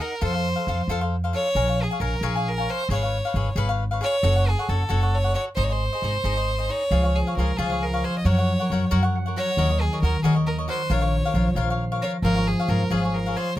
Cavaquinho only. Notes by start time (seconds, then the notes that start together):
0.00 D#4 A#4 D#5 F#5
0.21 F4 A4 C5 F5
0.33 A4 C5 F5
0.56 A4 C5 F5
0.68 F4 A4 C5 F5
0.89 F4 A4 C5 F5
1.01 A4 C5 F5
1.24 A4 C5 F5
1.33 F4 A4 C5 F5
1.55 A#4 C#5 F5 G#5
1.68 C#5 F5 G#5
1.91 C#5 F5 G#5
2.00 A#4 C#5 F5 G#5
2.23 A#4 C#5 F5 G#5
2.35 C#5 F5 G#5
2.58 C#5 F5 G#5
2.69 A#4 C#5 F5 G#5
2.90 G#4 B4 C#5 F5
3.03 B4 C#5 F5
3.25 B4 C#5 F5
3.36 G#4 B4 C#5 F5
3.56 G#4 B4 C#5 F5
3.69 B4 C#5 F5
3.91 B4 C#5 F5
4.01 G#4 B4 C#5 F5
4.23 F#4 A4 C#5 F#5
4.36 A4 C#5 F#5
4.59 A4 C#5 F#5
4.69 F#4 A4 C#5 F#5
4.89 F#4 A4 C#5 F#5
5.03 A4 C#5 F#5
5.24 A4 C#5 F#5
5.35 F#4 A4 C#5 F#5
5.56 D#4 G#4 C5 D#5
5.69 G#4 C5 D#5
5.93 G#4 C5 D#5
6.03 D#4 G#4 C5 D#5
6.24 D#4 G#4 C5 D#5
6.37 G#4 C5 D#5
6.58 G#4 C5 D#5
6.69 D#4 G#4 C5 D#5
6.91 F4 G#4 C#5 F5
7.03 G#4 C#5 F5
7.27 G#4 C#5 F5
7.38 F4 G#4 C#5 F5
7.58 F4 G#4 C#5 F5
7.70 G#4 C#5 F5
7.93 G#4 C#5 F5
8.04 F4 G#4 C#5 F5
8.25 F#4 A#4 C#5 F#5
8.38 A#4 C#5 F#5
8.60 A#4 C#5 F#5
8.71 F#4 A#4 C#5 F#5
8.91 F#4 A#4 C#5 F#5
9.03 A#4 C#5 F#5
9.26 A#4 C#5 F#5
9.36 F#4 A#4 C#5 F#5
9.58 F#4 A#4 C#5 D#5
9.70 A#4 C#5 D#5
9.93 A#4 C#5 D#5
10.03 F#4 A#4 C#5 D#5
10.24 F#4 A#4 C#5 D#5
10.35 A#4 C#5 D#5
10.58 A#4 C#5 D#5
10.68 F#4 A#4 C#5 D#5
10.90 F4 A#4 C#5 F5
11.01 A#4 C#5 F5
11.25 A#4 C#5 F5
11.34 F4 A#4 C#5 F5
11.56 F4 A#4 C#5 F5
11.70 A#4 C#5 F5
11.92 A#4 C#5 F5
12.04 F4 A#4 C#5 F5
12.24 F4 G#4 C#5 F5
12.36 G#4 C#5 F5
12.59 G#4 C#5 F5
12.68 F4 G#4 C#5 F5
12.90 F4 G#4 C#5 F5
13.03 G#4 C#5 F5
13.26 G#4 C#5 F5
13.37 F4 G#4 C#5 F5